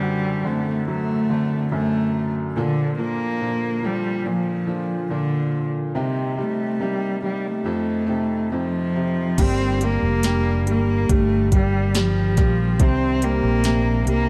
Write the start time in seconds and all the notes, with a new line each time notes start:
Already playing: F#2 D3 G3
0.02 C4 D4 F#4 A4
0.44 D3 A3 C4 D4 A4
0.88 F#3 A3
1.30 D3 C4 D4 A4
1.71 F#2 F#3 A3 C4 D4 A4
2.56 A#2 D3 F3 A#3 D4 A4
2.98 F3 A#3 D4 A4
3.41 A#2 F3 A#3 D4 A4
3.83 F3 G3 A#3 D4 A4
4.26 A#2 F3
4.67 F3 A#3 D4 A4
5.10 A#2 D3 F3 A#3 D4 A4
5.95 C3 G3 A#3 D#4 G4
6.37 G3 A3 D#4 G4
6.79 C3 G3 A#3 D#4 G4
7.22 G3 A#3 D#4 G4
7.47 A3
7.64 F2 F3 C4 D#4 A4
8.07 C3 C4 D#4 A4
8.51 F2 F3 C4 D#4 A4
8.96 C3
9.38 G1 G2 D3 G3 A#3 C4 D4 G4, kick, closed hi-hat, crash
9.81 G3 A#3 D4 G4, closed hi-hat
10.02 F1
10.23 G3 D4 G4, snare, closed hi-hat
10.66 G1 G3 A#3, closed hi-hat
11.09 G1 G3 A3, kick, closed hi-hat
11.52 G3 A#3 D4 G4, kick, closed hi-hat
11.95 G3 A#3 D4 G4, snare, closed hi-hat
11.99 F3
12.37 A#1 G3 A#3 D4 G4, kick, snare, closed hi-hat
12.80 C2 C3 D#3 G3 C4 D4 G4, kick, closed hi-hat
13.22 G3 A#3 C4 D4 G4, closed hi-hat
13.43 A#1
13.64 C3 G3 C4 D4 G4, snare, closed hi-hat
14.06 C2 G3 A#3, closed hi-hat